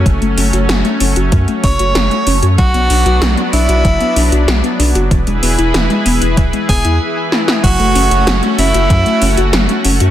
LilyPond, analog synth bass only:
\new Staff \with { instrumentName = "Analog synth bass" } { \clef bass \time 4/4 \key fis \minor \tempo 4 = 95 fis,,16 fis,,16 fis,,16 fis,,16 fis,,16 r16 fis,,16 fis,,16 fis,16 r16 fis,,16 fis,,16 fis,,16 r16 fis,,16 fis,16 | b,,16 b,,16 b,,16 b,,16 b,,16 r16 b,,16 b,,16 fis,,16 r16 b,,16 b,,16 b,,16 r16 b,,16 fis,,16 | e,,16 e,,16 e,,16 e,,16 e,,16 r16 e,,16 e,,16 d,,16 r16 e,,16 e,16 r4 | fis,,16 fis,,16 fis,,16 fis,,16 fis,,16 r16 fis,,16 fis,,16 fis,16 r16 fis,,16 fis,,16 fis,,16 r16 fis,,16 fis,16 | }